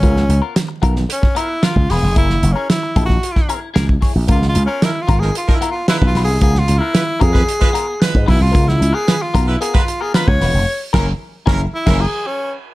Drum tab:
CC |----------------|----------------|----------------|----------------|
HH |x-x-x-x-x-x-x-o-|x-x-x-x-x-x-x-o-|x-x-x-x-x-x-x-o-|x-x-x-x-x-x-x-o-|
SD |-o--o--o-o--o-o-|-o--o--o-o--o-o-|-o--o--o-o--o-o-|-o--o--o-o--o-o-|
BD |o-----o--o---o--|o-----oo-o---oo-|o-----o--o---o--|o-----oo-o---oo-|

CC |----------------|--x------x------|
HH |x-x-x-x-x-x-x-o-|----------------|
SD |-o--o----o--o-o-|--o---o--o------|
BD |o-----o--o---o--|--o---o--o------|